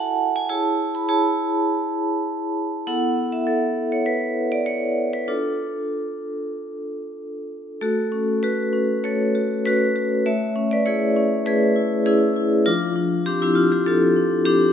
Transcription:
0.00 0.46 E4 medium
0.00 0.46 F#4 medium
0.00 0.46 A4 medium
0.00 0.52 E5 medium
0.00 0.52 F#5 loud
0.00 0.36 G#5 loud
0.00 0.49 A5 loud
0.36 0.50 G#5 loud
0.49 1.07 E4 medium
0.49 1.07 G#4 medium
0.49 1.07 C#5 medium
0.49 0.94 A5 loud
0.95 1.09 B5 loud
1.09 2.83 E4 medium
1.09 2.83 G#4 medium
1.09 2.83 C#5 medium
1.09 2.87 A5 loud
2.87 5.25 B3 medium
2.87 5.25 E4 medium
2.87 3.46 A4 medium
2.87 3.32 F#5 loud
3.32 3.47 E5 medium
3.47 3.91 A4 medium
3.92 4.07 C#5 medium
4.06 4.52 B4 medium
4.52 4.67 D5 medium
4.66 5.13 C#5 loud
5.13 5.29 B4 medium
5.28 7.76 D4 medium
5.28 7.76 F4 soft
5.28 7.17 A4 medium
7.81 9.00 A3 medium
7.81 8.39 F#4 medium
7.81 8.43 A4 loud
8.12 8.61 C#4 medium
8.43 9.00 F#4 medium
8.43 9.04 B4 loud
8.73 9.22 C#4 medium
9.04 10.22 A3 medium
9.04 9.62 A4 medium
9.04 9.65 C#5 loud
9.35 9.66 F#4 medium
9.65 10.14 C#4 medium
9.65 9.94 F#4 medium
9.65 10.26 B4 loud
9.96 10.26 F#4 medium
10.26 11.43 A3 medium
10.26 10.68 C#5 medium
10.26 10.71 E5 loud
10.56 11.04 C#4 medium
10.71 10.86 B4 medium
10.71 10.86 D5 loud
10.86 11.34 E4 medium
10.86 11.43 G#4 medium
10.86 11.46 C#5 loud
11.16 11.64 C#4 medium
11.46 12.62 A3 medium
11.46 12.03 G#4 medium
11.46 12.06 B4 loud
11.76 12.06 E4 medium
12.06 12.53 C#4 medium
12.06 12.35 E4 medium
12.06 12.65 G#4 loud
12.36 12.66 E4 medium
12.66 13.82 F3 medium
12.66 12.95 D4 medium
12.66 13.25 F4 loud
12.96 13.26 D4 medium
13.26 13.42 C4 medium
13.26 13.40 D4 medium
13.26 13.41 G4 loud
13.42 13.56 C4 medium
13.42 13.56 E4 medium
13.55 13.70 D4 medium
13.55 13.71 F4 loud
13.72 13.86 E4 medium
13.72 13.86 G4 loud
13.86 14.34 C4 medium
13.86 14.42 F4 medium
13.86 14.46 A4 loud
14.16 14.45 D4 medium
14.45 14.73 C4 medium
14.45 14.73 D4 medium
14.45 14.73 G4 loud

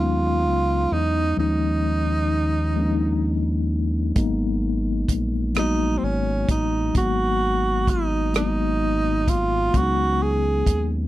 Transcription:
0.00 0.47 D#2 medium
0.00 1.39 F#3 medium
0.00 1.37 G#3 medium
0.00 1.39 B3 medium
0.00 1.39 C#4 medium
0.00 1.39 D#4 medium
0.00 0.94 F4 medium
0.45 0.87 C#2 medium
0.92 1.34 E2 medium
0.92 1.38 D#4 medium
1.36 4.13 D#2 medium
1.36 2.26 F3 medium
1.36 2.26 G#3 medium
1.36 2.27 A#3 medium
1.36 2.27 C#4 medium
1.36 3.67 D#4 medium
1.36 2.28 D#4 medium
2.76 3.66 F3 medium
2.76 3.66 G#3 medium
2.76 3.66 A#3 medium
2.76 3.67 C#4 medium
2.76 2.84 D4 medium
2.86 3.71 D#4 medium
4.14 5.05 G#1 loud
4.14 5.05 F#3 medium
4.14 5.05 G#3 medium
4.14 5.06 A#3 medium
4.14 5.06 B3 medium
4.14 5.07 D#4 medium
4.14 kick medium
4.14 closed hi-hat medium
5.08 5.98 A#1 medium
5.08 kick medium
5.08 closed hi-hat medium
5.54 6.44 F#3 medium
5.54 6.45 G#3 soft
5.54 6.45 A#3 soft
5.54 6.46 B3 soft
5.54 6.46 F#4 medium
5.54 cross-stick loud
5.54 closed hi-hat soft
5.59 5.99 D#4 medium
5.98 6.06 C4 medium
6.03 6.45 G#1 medium
6.03 6.50 C#4 medium
6.49 6.91 A1 medium
6.49 6.93 D#4 medium
6.49 kick medium
6.49 closed hi-hat medium
6.94 9.70 G#1 loud
6.94 7.84 F#3 medium
6.94 7.84 G#3 medium
6.94 7.85 A#3 medium
6.94 7.85 B3 medium
6.94 7.86 F#4 medium
6.94 7.91 F#4 medium
6.94 kick medium
6.94 closed hi-hat medium
7.87 8.36 D#4 medium
7.87 kick medium
7.87 closed hi-hat medium
8.33 9.23 F#3 medium
8.33 9.24 G#3 medium
8.33 9.24 A#3 soft
8.33 9.25 B3 medium
8.33 9.31 D#4 medium
8.33 9.25 D#4 medium
8.33 cross-stick loud
8.33 closed hi-hat medium
9.28 9.78 F4 medium
9.28 kick medium
9.28 closed hi-hat medium
9.73 10.63 C#2 medium
9.73 10.63 F#3 medium
9.73 10.63 G#3 medium
9.73 10.64 B3 medium
9.73 10.64 C#4 medium
9.73 9.82 D4 medium
9.73 10.24 F#4 loud
9.73 kick medium
9.73 closed hi-hat medium
9.83 10.68 D#4 medium
10.22 10.88 G#4 medium
10.66 11.08 D#2 medium
10.66 kick medium
10.66 closed hi-hat medium

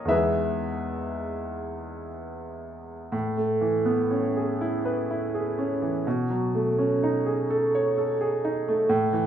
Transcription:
0.00 0.14 A#4 medium
0.00 0.14 C#5 medium
0.00 0.15 D#5 medium
0.00 0.15 F5 medium
0.05 3.06 E2 soft
0.05 3.07 E3 soft
0.05 3.07 G#3 soft
0.05 3.08 B3 soft
0.05 2.10 E5 medium
0.09 3.08 D#4 soft
0.09 2.07 G#4 soft
0.09 2.07 B4 medium
3.12 6.01 A2 medium
3.37 3.76 A3 soft
3.61 4.00 E3 soft
3.85 4.25 B3 soft
4.11 4.50 C#4 soft
4.37 4.75 G#4 soft
4.61 5.00 E4 medium
4.85 5.24 B4 soft
5.11 5.49 E4 soft
5.34 5.72 G#4 soft
5.58 5.96 C#4 medium
5.82 6.05 E3 soft
6.07 8.86 B2 medium
6.30 6.68 F#3 soft
6.55 6.93 A3 soft
6.78 7.17 C#4 medium
7.03 7.41 D#4 medium
7.26 7.64 G#4 soft
7.50 7.88 A4 medium
7.75 8.12 C#5 medium
7.98 8.35 A4 medium
8.21 8.57 G#4 medium
8.45 8.81 D#4 medium
8.68 8.90 A3 medium
8.89 9.27 A2 medium
9.13 9.27 E3 medium

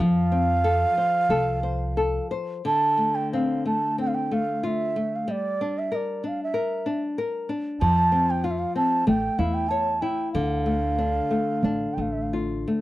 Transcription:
0.00 0.83 F2 loud
0.00 2.61 F3 medium
0.00 2.29 F5 loud
0.32 0.62 C4 soft
0.64 0.95 A4 medium
0.97 1.29 C5 soft
1.29 2.18 C2 medium
1.29 1.62 A4 medium
1.63 1.96 C5 medium
1.97 2.30 A4 medium
2.31 2.64 C5 soft
2.65 5.23 D3 medium
2.65 3.16 A5 loud
2.98 3.30 A3 soft
3.15 3.32 G5 medium
3.33 3.65 C4 soft
3.33 3.63 F5 medium
3.65 3.97 A3 soft
3.65 3.96 A5 medium
3.98 4.30 C4 soft
3.98 4.09 G5 loud
4.07 4.16 F5 medium
4.14 4.35 G5 medium
4.31 4.63 A3 soft
4.31 4.67 F5 medium
4.63 4.95 F4 medium
4.63 5.17 E5 medium
4.96 5.27 A3 soft
5.15 5.33 F5 medium
5.28 7.77 G3 medium
5.32 5.80 D5 medium
5.61 5.91 D4 soft
5.78 5.97 E5 medium
5.92 6.22 A#4 soft
5.92 6.29 D5 medium
6.24 6.54 D4 soft
6.24 6.41 F5 medium
6.44 7.00 E5 medium
6.54 6.85 A#4 medium
6.86 7.17 D4 medium
7.18 7.49 A#4 medium
7.49 7.80 D4 soft
7.81 8.63 F2 medium
7.81 9.03 F3 medium
7.81 8.31 A5 loud
8.12 8.43 C4 soft
8.30 8.46 G5 medium
8.44 8.75 F4 medium
8.44 8.52 F5 medium
8.51 8.60 E5 medium
8.59 8.76 F5 medium
8.75 9.06 C4 soft
8.75 9.05 A5 medium
9.07 9.27 A1 medium
9.07 10.30 A3 medium
9.07 9.41 G5 loud
9.38 10.01 E2 medium
9.38 9.70 E4 medium
9.38 9.55 F5 medium
9.54 9.70 G5 medium
9.69 10.02 C#5 medium
9.69 10.03 A5 loud
10.02 10.33 E4 medium
10.02 10.32 G5 medium
10.33 11.19 D2 medium
10.33 12.81 D3 medium
10.33 11.95 F5 medium
10.66 10.97 A3 soft
10.98 11.30 D4 medium
11.30 11.63 A3 soft
11.63 11.85 A1 medium
11.63 11.97 D4 medium
11.94 12.64 A1 medium
11.94 12.03 G5 medium
11.98 12.31 A3 soft
11.98 12.14 F5 medium
12.12 12.24 E5 medium
12.22 12.32 F5 medium
12.33 12.66 F4 soft
12.68 12.81 A3 soft

